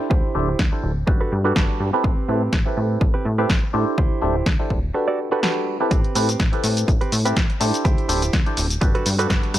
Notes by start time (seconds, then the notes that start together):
Already playing: D4 E4 G4 A4 C5
0.10 D2 E4 G4 C5, kick
0.34 D1 D4 E4 G4 A4 C5
0.59 D2, kick, snare
0.72 D4 E4 G4 A4 C5
0.83 D1
1.07 G1 D4 F#4 G4 A4 B4, muted clean electric guitar stroke, kick
1.21 G2 F#4 A4 B4
1.32 G2
1.44 D4 F#4 G4 A4 B4
1.55 G1 G3 D4 A4 B4, kick, snare
1.69 muted clean electric guitar stroke
1.80 G2, muted clean electric guitar stroke
1.93 C4 E4 G4 A4 B4
2.04 A1 C4 G4 B4, kick
2.28 A2 C4 E4 G4 A4 B4
2.53 A1, kick, snare
2.65 C4 E4 G4 A4 B4
2.77 A2
3.01 A1, muted clean electric guitar stroke, kick
3.14 C4 G4 B4
3.25 A2
3.38 C4 E4 G4 A4 B4
3.50 A1, kick, snare
3.62 muted clean electric guitar stroke
3.73 A2 D4 E4 G4 A4 C5, muted clean electric guitar stroke
3.98 D2 E4 G4 C5, kick
4.21 D1 D4 E4 G4 A4 C5
4.46 D2, kick, snare
4.59 D4 E4 G4 A4 C5
4.70 D1, kick
4.94 D4 F#4 G4 A4 B4, muted clean electric guitar stroke
5.08 F#4 A4 D5
5.31 D4 F#4 G4 A4 B4
5.43 G3 D4 F#4 A4 B4, snare
5.56 muted clean electric guitar stroke
5.67 muted clean electric guitar stroke
5.80 C4 E4 G4 A4 B4
5.91 A1 C4 G4 B4, kick, closed hi-hat, cabasa
6.04 closed hi-hat
6.15 A2 C4 E4 G4 A4 B4, open hi-hat, cabasa
6.29 closed hi-hat, cabasa
6.40 A1, kick, snare, closed hi-hat, cabasa
6.52 C4 E4 G4 A4 B4, closed hi-hat
6.64 A2, open hi-hat, cabasa
6.77 closed hi-hat, cabasa
6.88 A1, muted clean electric guitar stroke, kick, closed hi-hat, cabasa
7.01 C4 G4 B4, closed hi-hat
7.12 A2, open hi-hat, cabasa
7.25 C4 E4 G4 A4 B4, closed hi-hat, cabasa
7.36 A1, kick, snare, closed hi-hat, cabasa
7.49 muted clean electric guitar stroke, closed hi-hat
7.60 A2 D4 E4 G4 A4 C5, muted clean electric guitar stroke, open hi-hat, cabasa
7.74 closed hi-hat, cabasa
7.85 D2 E4 G4 C5, kick, closed hi-hat, cabasa
7.98 closed hi-hat
8.08 D1 D4 E4 G4 A4 C5, open hi-hat, cabasa
8.22 closed hi-hat, cabasa
8.33 D2, kick, snare, closed hi-hat, cabasa
8.46 D4 E4 G4 A4 C5, closed hi-hat
8.57 D1, open hi-hat, cabasa
8.70 closed hi-hat, cabasa
8.81 G1 D4 F#4 G4 A4 B4, muted clean electric guitar stroke, kick, closed hi-hat, cabasa
8.95 G2 F#4 A4 B4, closed hi-hat
9.06 G2, open hi-hat, cabasa
9.18 D4 F#4 G4 A4 B4, closed hi-hat, cabasa
9.29 G1 G3 D4 F#4 B4, kick, snare, closed hi-hat, cabasa
9.43 muted clean electric guitar stroke, closed hi-hat
9.54 G2, muted clean electric guitar stroke, cross-stick, open hi-hat, cabasa